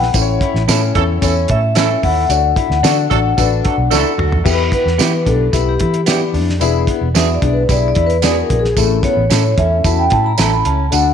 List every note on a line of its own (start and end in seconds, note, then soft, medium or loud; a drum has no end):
0.00 0.11 A#1 medium
0.00 0.12 G3 medium
0.00 0.12 B3 medium
0.00 0.12 E4 medium
0.00 0.12 B4 loud
0.00 0.16 F#5 loud
0.00 snare soft
0.13 0.37 A1 loud
0.13 0.52 C#4 loud
0.13 0.52 E4 medium
0.13 0.53 A4 medium
0.13 0.21 C5 medium
0.13 0.92 C#5 medium
0.13 kick loud
0.13 closed hi-hat medium
0.13 tambourine medium
0.22 0.56 C#5 loud
0.41 0.62 E4 medium
0.41 kick medium
0.41 closed hi-hat medium
0.54 0.66 A1 loud
0.54 snare soft
0.68 0.91 A2 medium
0.68 0.87 C#4 medium
0.68 0.80 C#4 medium
0.68 1.19 C#4 medium
0.68 0.87 E4 medium
0.68 0.80 E4 medium
0.68 0.87 A4 medium
0.68 0.81 A4 medium
0.68 0.88 C#5 medium
0.68 snare loud
0.68 closed hi-hat medium
0.68 tambourine medium
0.95 1.18 E2 medium
0.95 1.04 E3 loud
0.95 1.04 A3 loud
0.95 1.14 C#4 medium
0.95 1.04 C#4 medium
0.95 1.14 E4 medium
0.95 1.04 A4 loud
0.95 1.15 A4 medium
0.95 1.15 C#5 medium
0.95 kick loud
0.95 closed hi-hat medium
1.22 1.45 E2 medium
1.22 1.34 E3 medium
1.22 1.34 A3 medium
1.22 1.73 C#4 medium
1.22 1.60 C#4 medium
1.22 1.34 C#4 medium
1.22 1.60 E4 medium
1.22 1.61 A4 medium
1.22 1.34 A4 medium
1.22 1.61 C#5 medium
1.22 1.51 C#5 medium
1.22 kick medium
1.22 closed hi-hat medium
1.22 tambourine medium
1.48 1.95 A2 loud
1.48 1.61 E3 medium
1.48 1.61 A3 medium
1.48 1.61 C#4 medium
1.48 1.61 A4 medium
1.48 2.05 E5 loud
1.48 kick medium
1.48 closed hi-hat medium
1.75 2.27 E3 medium
1.75 2.27 A3 medium
1.75 1.88 C#4 medium
1.75 2.14 C#4 medium
1.75 2.27 C#4 medium
1.75 2.14 E4 medium
1.75 1.88 E4 medium
1.75 2.27 A4 medium
1.75 2.14 A4 medium
1.75 1.89 A4 loud
1.75 2.15 C#5 medium
1.75 snare loud
1.75 closed hi-hat medium
1.75 tambourine medium
2.03 2.26 D#2 medium
2.03 2.24 E4 medium
2.03 3.88 F#5 loud
2.03 kick medium
2.03 open hi-hat medium
2.29 2.52 D2 loud
2.29 2.68 D4 loud
2.29 2.68 F#4 medium
2.29 2.68 A4 medium
2.29 2.37 C#5 medium
2.29 closed hi-hat medium
2.29 tambourine medium
2.37 2.72 D5 loud
2.56 2.77 E4 medium
2.56 kick medium
2.56 closed hi-hat medium
2.70 2.81 D2 medium
2.70 snare soft
2.83 3.06 D3 loud
2.83 3.02 D4 medium
2.83 2.96 D4 medium
2.83 3.35 D4 medium
2.83 3.03 F#4 medium
2.83 2.96 F#4 medium
2.83 3.03 A4 medium
2.83 2.96 A4 medium
2.83 3.03 D5 loud
2.83 snare loud
2.83 closed hi-hat medium
2.83 tambourine medium
3.10 3.34 A1 medium
3.10 3.19 F#3 loud
3.10 3.19 A3 loud
3.10 3.29 D4 medium
3.10 3.19 D4 loud
3.10 3.30 F#4 medium
3.10 3.19 A4 loud
3.10 3.30 A4 medium
3.10 3.30 D5 medium
3.10 kick medium
3.10 closed hi-hat medium
3.37 3.61 A1 medium
3.37 3.49 F#3 medium
3.37 3.49 A3 medium
3.37 3.75 D4 medium
3.37 3.88 D4 medium
3.37 3.49 D4 medium
3.37 3.76 F#4 medium
3.37 3.49 A4 medium
3.37 3.76 A4 medium
3.37 3.76 B4 loud
3.37 kick medium
3.37 closed hi-hat medium
3.37 tambourine medium
3.64 3.76 F#3 medium
3.64 3.76 A3 medium
3.64 3.76 D4 medium
3.64 3.76 A4 medium
3.64 kick medium
3.64 closed hi-hat medium
3.78 3.89 B1 medium
3.90 4.03 C#2 medium
3.90 4.43 F#3 medium
3.90 4.43 A3 medium
3.90 4.29 D4 medium
3.90 4.03 D4 medium
3.90 4.43 D4 medium
3.90 4.12 E4 medium
3.90 4.29 F#4 medium
3.90 4.04 F#4 medium
3.90 4.43 A4 medium
3.90 4.29 A4 medium
3.90 4.04 A4 medium
3.90 4.30 D5 loud
3.90 snare medium
3.90 tambourine medium
4.18 4.30 D2 medium
4.18 4.39 F#4 medium
4.18 mid tom medium
4.32 4.43 E2 medium
4.32 floor tom medium
4.44 4.68 E2 loud
4.44 4.83 B3 loud
4.44 4.83 E4 medium
4.44 4.65 E4 medium
4.44 4.83 G4 medium
4.44 4.52 A4 medium
4.44 kick loud
4.44 crash medium
4.44 tambourine medium
4.52 4.87 B4 loud
4.72 4.92 B3 medium
4.72 5.29 B4 medium
4.72 kick medium
4.72 closed hi-hat medium
4.85 4.97 E2 medium
4.85 snare soft
4.98 5.28 E3 medium
4.98 5.18 B3 medium
4.98 5.11 B3 medium
4.98 5.18 E4 medium
4.98 5.11 E4 medium
4.98 5.18 G4 medium
4.98 5.12 G4 medium
4.98 5.19 B4 medium
4.98 snare loud
4.98 closed hi-hat loud
4.98 tambourine medium
5.26 5.49 B1 medium
5.26 5.45 B3 medium
5.26 5.46 D4 medium
5.26 5.45 E4 medium
5.26 5.46 G4 medium
5.26 5.55 A4 medium
5.26 5.46 B4 medium
5.26 kick medium
5.26 closed hi-hat medium
5.53 5.76 B1 medium
5.53 5.91 B3 medium
5.53 5.73 E4 medium
5.53 5.91 E4 medium
5.53 5.92 G4 medium
5.53 5.67 G4 medium
5.53 5.92 B4 medium
5.53 kick medium
5.53 closed hi-hat medium
5.53 tambourine medium
5.69 6.18 G4 medium
5.79 6.35 E3 medium
5.79 6.00 E4 medium
5.79 kick medium
5.79 closed hi-hat medium
5.94 closed hi-hat medium
6.06 6.19 B3 medium
6.06 6.45 B3 medium
6.06 6.45 E4 medium
6.06 6.19 E4 medium
6.06 6.14 F#4 soft
6.06 6.20 G4 loud
6.06 6.46 D5 medium
6.06 snare loud
6.06 closed hi-hat medium
6.06 tambourine medium
6.14 6.49 G4 medium
6.34 6.62 F2 medium
6.34 6.54 D4 medium
6.34 open hi-hat medium
6.49 snare soft
6.60 6.84 E1 loud
6.60 6.99 B3 loud
6.60 6.99 D4 medium
6.60 6.81 E4 medium
6.60 6.99 E4 loud
6.60 7.00 G#4 loud
6.60 closed hi-hat medium
6.60 tambourine medium
6.87 7.08 B3 medium
6.87 kick medium
6.87 closed hi-hat medium
7.01 7.15 E1 loud
7.14 7.38 E2 medium
7.14 7.34 B3 medium
7.14 7.27 B3 medium
7.14 7.34 D4 medium
7.14 7.27 D4 medium
7.14 7.34 E4 medium
7.14 7.34 F#4 medium
7.14 7.28 G#4 medium
7.14 7.34 E5 medium
7.14 snare loud
7.14 closed hi-hat medium
7.14 tambourine loud
7.34 7.52 D5 medium
7.41 7.65 B1 loud
7.41 7.61 B3 medium
7.41 7.61 D4 medium
7.41 7.62 D4 medium
7.41 7.61 E4 medium
7.41 7.61 G#4 medium
7.41 kick medium
7.41 closed hi-hat medium
7.53 7.71 B4 medium
7.68 7.92 B1 medium
7.68 8.06 B3 medium
7.68 8.07 D4 medium
7.68 8.07 E4 medium
7.68 7.89 E4 medium
7.68 7.76 G4 medium
7.68 7.87 D5 medium
7.68 kick medium
7.68 closed hi-hat medium
7.68 tambourine medium
7.76 8.11 G#4 medium
7.88 8.06 D5 medium
7.95 8.42 E2 loud
7.95 8.16 E4 medium
7.95 kick medium
7.95 closed hi-hat medium
8.06 8.24 B4 medium
8.06 closed hi-hat soft
8.21 8.60 B3 medium
8.21 8.35 B3 medium
8.21 8.60 D4 medium
8.21 8.35 D4 medium
8.21 8.61 E4 medium
8.21 8.29 F4 medium
8.21 8.74 G#4 medium
8.21 8.35 G#4 medium
8.21 8.42 D5 medium
8.21 snare loud
8.21 closed hi-hat medium
8.21 tambourine medium
8.29 8.64 F#4 medium
8.41 8.60 A#4 medium
8.50 8.73 A#1 medium
8.50 kick medium
8.50 closed hi-hat medium
8.59 8.84 G#4 medium
8.65 snare soft
8.76 8.99 A1 loud
8.76 9.14 A3 medium
8.76 8.97 A3 medium
8.76 8.83 C4 medium
8.76 9.15 E4 medium
8.76 9.15 A4 loud
8.76 kick medium
8.76 closed hi-hat medium
8.76 tambourine medium
8.83 9.18 C#4 medium
9.03 9.24 B3 medium
9.03 9.60 C#5 medium
9.03 kick medium
9.03 closed hi-hat medium
9.17 9.28 A1 loud
9.30 9.53 A2 medium
9.30 9.50 A3 medium
9.30 9.42 C#4 medium
9.30 9.50 C#4 medium
9.30 9.43 E4 medium
9.30 9.50 E4 medium
9.30 9.43 A4 medium
9.30 9.50 A4 medium
9.30 snare loud
9.30 closed hi-hat medium
9.30 tambourine medium
9.57 9.81 E2 loud
9.57 9.77 A3 medium
9.57 9.78 C#4 medium
9.57 9.77 C#4 medium
9.57 9.77 E4 medium
9.57 9.77 A4 medium
9.57 9.83 E5 loud
9.57 kick medium
9.57 closed hi-hat medium
9.84 10.07 E2 loud
9.84 10.22 A3 medium
9.84 9.91 B3 soft
9.84 10.05 E4 medium
9.84 10.23 E4 medium
9.84 10.23 F#4 medium
9.84 9.99 A5 medium
9.84 kick medium
9.84 closed hi-hat medium
9.84 tambourine medium
9.91 10.26 C#4 medium
9.99 10.13 G5 medium
10.10 10.35 A2 medium
10.10 10.32 E4 medium
10.10 10.22 A5 loud
10.10 kick medium
10.10 closed hi-hat medium
10.24 10.38 A#5 medium
10.24 10.26 B5 medium
10.37 10.61 A1 loud
10.37 10.76 A3 medium
10.37 10.76 C#4 medium
10.37 10.50 C#4 medium
10.37 10.77 E4 medium
10.37 10.51 E4 loud
10.37 10.77 A4 medium
10.37 10.51 A4 loud
10.37 10.53 A5 loud
10.37 snare loud
10.37 closed hi-hat medium
10.37 tambourine medium
10.53 10.67 B5 medium
10.65 10.88 C#2 medium
10.65 10.86 C#4 medium
10.65 10.94 A5 medium
10.65 closed hi-hat medium
10.90 11.14 D2 medium
10.90 11.14 A3 medium
10.90 11.14 D4 medium
10.90 11.13 D4 medium
10.90 11.14 F#4 medium
10.90 11.14 A4 medium
10.90 11.14 F#5 loud
10.90 closed hi-hat medium
10.90 tambourine medium